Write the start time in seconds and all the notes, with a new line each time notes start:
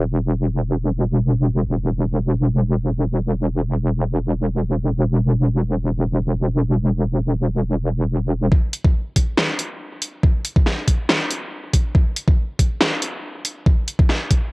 Already playing: E1
1.66 E1
8.52 kick
8.73 closed hi-hat
8.85 kick
9.16 kick, closed hi-hat
9.38 snare
9.59 closed hi-hat
10.02 closed hi-hat
10.23 kick
10.45 closed hi-hat
10.56 kick
10.66 snare
10.88 kick, closed hi-hat
11.09 snare
11.31 closed hi-hat
11.73 kick, closed hi-hat
11.95 kick
12.16 closed hi-hat
12.28 kick
12.59 kick, closed hi-hat
12.81 snare
13.02 closed hi-hat
13.45 closed hi-hat
13.66 kick
13.88 closed hi-hat
13.99 kick
14.09 snare
14.30 kick, closed hi-hat